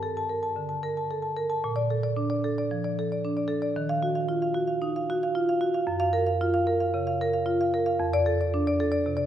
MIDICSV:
0, 0, Header, 1, 2, 480
1, 0, Start_track
1, 0, Tempo, 530035
1, 1482, Time_signature, 4, 2, 24, 8
1, 8389, End_track
2, 0, Start_track
2, 0, Title_t, "Marimba"
2, 0, Program_c, 0, 12
2, 0, Note_on_c, 0, 43, 59
2, 0, Note_on_c, 0, 81, 39
2, 24, Note_on_c, 0, 69, 40
2, 103, Note_off_c, 0, 81, 0
2, 154, Note_on_c, 0, 81, 46
2, 223, Note_off_c, 0, 69, 0
2, 266, Note_on_c, 0, 70, 38
2, 349, Note_off_c, 0, 81, 0
2, 388, Note_on_c, 0, 81, 44
2, 466, Note_off_c, 0, 70, 0
2, 484, Note_off_c, 0, 43, 0
2, 508, Note_on_c, 0, 50, 37
2, 587, Note_off_c, 0, 81, 0
2, 625, Note_on_c, 0, 81, 41
2, 707, Note_off_c, 0, 50, 0
2, 753, Note_on_c, 0, 70, 42
2, 825, Note_off_c, 0, 81, 0
2, 880, Note_on_c, 0, 81, 39
2, 949, Note_off_c, 0, 70, 0
2, 1002, Note_on_c, 0, 69, 41
2, 1073, Note_off_c, 0, 81, 0
2, 1108, Note_on_c, 0, 81, 40
2, 1193, Note_off_c, 0, 69, 0
2, 1237, Note_on_c, 0, 70, 43
2, 1307, Note_off_c, 0, 81, 0
2, 1355, Note_on_c, 0, 81, 46
2, 1431, Note_off_c, 0, 70, 0
2, 1478, Note_off_c, 0, 81, 0
2, 1485, Note_on_c, 0, 46, 56
2, 1592, Note_on_c, 0, 74, 57
2, 1725, Note_on_c, 0, 69, 42
2, 1789, Note_off_c, 0, 74, 0
2, 1842, Note_on_c, 0, 74, 47
2, 1917, Note_off_c, 0, 69, 0
2, 1961, Note_on_c, 0, 62, 42
2, 2037, Note_off_c, 0, 74, 0
2, 2082, Note_on_c, 0, 74, 45
2, 2157, Note_off_c, 0, 62, 0
2, 2211, Note_on_c, 0, 69, 45
2, 2279, Note_off_c, 0, 74, 0
2, 2338, Note_on_c, 0, 74, 43
2, 2403, Note_off_c, 0, 69, 0
2, 2422, Note_off_c, 0, 46, 0
2, 2456, Note_on_c, 0, 53, 44
2, 2526, Note_off_c, 0, 74, 0
2, 2576, Note_on_c, 0, 74, 43
2, 2643, Note_off_c, 0, 53, 0
2, 2706, Note_on_c, 0, 69, 45
2, 2762, Note_off_c, 0, 74, 0
2, 2826, Note_on_c, 0, 74, 41
2, 2886, Note_off_c, 0, 69, 0
2, 2939, Note_on_c, 0, 62, 43
2, 3005, Note_off_c, 0, 74, 0
2, 3050, Note_on_c, 0, 74, 42
2, 3122, Note_off_c, 0, 62, 0
2, 3149, Note_on_c, 0, 69, 45
2, 3237, Note_off_c, 0, 74, 0
2, 3278, Note_on_c, 0, 74, 48
2, 3347, Note_off_c, 0, 69, 0
2, 3400, Note_off_c, 0, 74, 0
2, 3408, Note_on_c, 0, 51, 57
2, 3526, Note_on_c, 0, 77, 62
2, 3646, Note_on_c, 0, 66, 43
2, 3718, Note_off_c, 0, 77, 0
2, 3761, Note_on_c, 0, 77, 44
2, 3838, Note_off_c, 0, 66, 0
2, 3881, Note_on_c, 0, 65, 43
2, 3955, Note_off_c, 0, 77, 0
2, 4004, Note_on_c, 0, 77, 44
2, 4076, Note_off_c, 0, 65, 0
2, 4115, Note_on_c, 0, 66, 45
2, 4198, Note_off_c, 0, 77, 0
2, 4234, Note_on_c, 0, 77, 40
2, 4313, Note_off_c, 0, 66, 0
2, 4341, Note_off_c, 0, 51, 0
2, 4362, Note_on_c, 0, 63, 45
2, 4433, Note_off_c, 0, 77, 0
2, 4493, Note_on_c, 0, 77, 45
2, 4556, Note_off_c, 0, 63, 0
2, 4619, Note_on_c, 0, 66, 50
2, 4681, Note_off_c, 0, 77, 0
2, 4738, Note_on_c, 0, 77, 49
2, 4803, Note_off_c, 0, 66, 0
2, 4847, Note_on_c, 0, 65, 46
2, 4922, Note_off_c, 0, 77, 0
2, 4972, Note_on_c, 0, 77, 49
2, 5036, Note_off_c, 0, 65, 0
2, 5081, Note_on_c, 0, 66, 44
2, 5159, Note_off_c, 0, 77, 0
2, 5201, Note_on_c, 0, 77, 47
2, 5273, Note_off_c, 0, 66, 0
2, 5315, Note_on_c, 0, 42, 60
2, 5321, Note_off_c, 0, 77, 0
2, 5432, Note_on_c, 0, 77, 67
2, 5552, Note_on_c, 0, 70, 51
2, 5631, Note_off_c, 0, 77, 0
2, 5674, Note_on_c, 0, 77, 45
2, 5752, Note_off_c, 0, 70, 0
2, 5807, Note_on_c, 0, 65, 48
2, 5873, Note_off_c, 0, 77, 0
2, 5921, Note_on_c, 0, 77, 54
2, 6000, Note_off_c, 0, 65, 0
2, 6040, Note_on_c, 0, 70, 47
2, 6117, Note_off_c, 0, 77, 0
2, 6161, Note_on_c, 0, 77, 47
2, 6235, Note_off_c, 0, 70, 0
2, 6254, Note_off_c, 0, 42, 0
2, 6284, Note_on_c, 0, 49, 46
2, 6355, Note_off_c, 0, 77, 0
2, 6403, Note_on_c, 0, 77, 49
2, 6476, Note_off_c, 0, 49, 0
2, 6532, Note_on_c, 0, 70, 50
2, 6595, Note_off_c, 0, 77, 0
2, 6643, Note_on_c, 0, 77, 45
2, 6719, Note_off_c, 0, 70, 0
2, 6755, Note_on_c, 0, 65, 47
2, 6834, Note_off_c, 0, 77, 0
2, 6889, Note_on_c, 0, 77, 49
2, 6951, Note_off_c, 0, 65, 0
2, 7009, Note_on_c, 0, 70, 50
2, 7078, Note_off_c, 0, 77, 0
2, 7119, Note_on_c, 0, 77, 52
2, 7197, Note_off_c, 0, 70, 0
2, 7240, Note_off_c, 0, 77, 0
2, 7241, Note_on_c, 0, 41, 65
2, 7367, Note_on_c, 0, 74, 70
2, 7481, Note_on_c, 0, 69, 51
2, 7555, Note_off_c, 0, 74, 0
2, 7615, Note_on_c, 0, 74, 46
2, 7672, Note_off_c, 0, 69, 0
2, 7732, Note_on_c, 0, 62, 51
2, 7797, Note_off_c, 0, 74, 0
2, 7854, Note_on_c, 0, 74, 53
2, 7915, Note_off_c, 0, 62, 0
2, 7970, Note_on_c, 0, 69, 51
2, 8034, Note_off_c, 0, 74, 0
2, 8075, Note_on_c, 0, 74, 52
2, 8151, Note_off_c, 0, 69, 0
2, 8162, Note_off_c, 0, 41, 0
2, 8205, Note_on_c, 0, 48, 49
2, 8264, Note_off_c, 0, 74, 0
2, 8302, Note_on_c, 0, 74, 50
2, 8389, Note_off_c, 0, 48, 0
2, 8389, Note_off_c, 0, 74, 0
2, 8389, End_track
0, 0, End_of_file